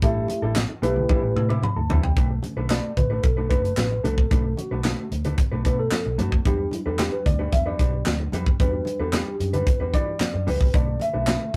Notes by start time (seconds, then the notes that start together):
0.02 A1 G3 A3 D4 E4 G4 A4 E5, kick, closed hi-hat
0.28 muted clean electric guitar stroke, closed hi-hat, muted conga
0.42 A1 G3 D4 E4 A4
0.56 muted clean electric guitar stroke, snare, clap, closed hi-hat, high conga
0.69 muted clean electric guitar stroke
0.82 B1 G3 A3 D4 E4 G4 B4, closed hi-hat, muted conga
0.96 muted clean electric guitar stroke, low conga
1.09 G3 D4 E4 B4, kick, high tom, muted conga
1.22 A1, muted clean electric guitar stroke
1.36 A2 E6, muted clean electric guitar stroke, mid tom
1.49 G3 D4 E4 B4 D6, mid tom
1.63 B5, muted clean electric guitar stroke, mid tom, high conga
1.76 D2 A5, muted clean electric guitar stroke
1.89 C#2 G3 D4 E4 B4, floor tom, high conga
2.02 C2 G5, muted clean electric guitar stroke, floor tom
2.16 B1 A3 D4 F#4 B4, kick, closed hi-hat
2.30 muted clean electric guitar stroke
2.42 D3 A3 C#4, muted clean electric guitar stroke, closed hi-hat, muted conga
2.56 B1 A3 D4 F#4 B4
2.70 A3 D4 F#4 B4 D5, snare, clap, closed hi-hat, high conga
2.84 muted clean electric guitar stroke
2.97 A1 B4, muted clean electric guitar stroke, kick, closed hi-hat, muted conga, low conga
3.10 A3 D4 F#4 B4
3.23 B1 A4, muted clean electric guitar stroke, kick, closed hi-hat, muted conga
3.37 A3 D4 F#4 B4
3.50 F#1 A3 D4 F#4 B4, kick, closed hi-hat
3.64 muted clean electric guitar stroke, closed hi-hat
3.77 A1, muted clean electric guitar stroke, snare, clap, closed hi-hat, high conga
3.91 muted clean electric guitar stroke
4.04 C2 A3 D4 F#4 A4 B4, closed hi-hat, high conga
4.17 muted clean electric guitar stroke, kick
4.31 B1 D3 A3 C#4 D4 F#4 B4, kick, closed hi-hat
4.44 muted clean electric guitar stroke
4.57 F#4, muted clean electric guitar stroke, closed hi-hat, muted conga
4.71 B1 A3 D4 F#4 B4
4.84 A3 D4 F#4 B4, snare, clap, closed hi-hat, high conga
4.98 muted clean electric guitar stroke
5.11 D2, muted clean electric guitar stroke, closed hi-hat, muted conga
5.25 A3 D4 F#4 B4, closed hi-hat, low conga
5.38 muted clean electric guitar stroke, kick, closed hi-hat, muted conga
5.52 B1 A3 D4 F#4 B4
5.65 B2 A3 D4 F#4 B4, kick, closed hi-hat
5.79 A4, muted clean electric guitar stroke
5.91 muted clean electric guitar stroke, snare, clap, closed hi-hat, high conga
6.05 B1, muted clean electric guitar stroke
6.18 F#2 A3 D4 F#4 B4, closed hi-hat, high conga
6.32 F2, muted clean electric guitar stroke, kick
6.45 E2 F#3 G3 D4 F#4 G4 B4, kick, closed hi-hat
6.59 muted clean electric guitar stroke
6.71 E4, muted clean electric guitar stroke, closed hi-hat, muted conga
6.86 E2 G3 D4 F#4 A4 B4
6.99 G3 D4 F#4 G4 B4, snare, clap, closed hi-hat, high conga
7.12 B4, muted clean electric guitar stroke
7.26 D2 D5, muted clean electric guitar stroke, kick, closed hi-hat, muted conga, low conga
7.39 G3 D4 F#4 B4
7.52 E2 E5, muted clean electric guitar stroke, kick, closed hi-hat, muted conga
7.66 G3 D4 F#4 B4 D5
7.79 B1 G3 D4 F#4 B4, kick, closed hi-hat
7.93 muted clean electric guitar stroke
8.05 D2, muted clean electric guitar stroke, snare, clap, closed hi-hat, high conga
8.20 muted clean electric guitar stroke
8.32 F2 G3 D4 F#4 B4, closed hi-hat, high conga
8.46 muted clean electric guitar stroke, kick
8.60 E2 G3 D4 F#4 B4, kick, closed hi-hat
8.73 muted clean electric guitar stroke
8.85 muted clean electric guitar stroke, closed hi-hat, muted conga
9.00 E2 G3 D4 F#4 A4 B4
9.13 G3 D4 F#4 G4 B4, snare, clap, closed hi-hat, high conga
9.26 muted clean electric guitar stroke
9.40 F#2, muted clean electric guitar stroke, closed hi-hat, muted conga
9.53 G3 D4 F#4 B4, closed hi-hat, low conga
9.67 muted clean electric guitar stroke, kick, closed hi-hat, muted conga
9.80 E2 G3 D4 F#4 B4
9.94 E3 G3 D4 F#4 B4 D5, kick, closed hi-hat
10.07 muted clean electric guitar stroke
10.20 muted clean electric guitar stroke, snare, clap, closed hi-hat, high conga
10.34 F#2, muted clean electric guitar stroke
10.47 C#2 G3 D4 F#4 B4, open hi-hat, high conga
10.60 C2, muted clean electric guitar stroke, kick
10.73 B1 D3 A3 C#4 D4 F#4 B4 D5, kick, closed hi-hat
10.87 muted clean electric guitar stroke
11.00 E5, muted clean electric guitar stroke, closed hi-hat, muted conga
11.13 B1 A3 D4 F#4 B4
11.27 A3 D4 F#4 B4, snare, clap, closed hi-hat, high conga
11.41 muted clean electric guitar stroke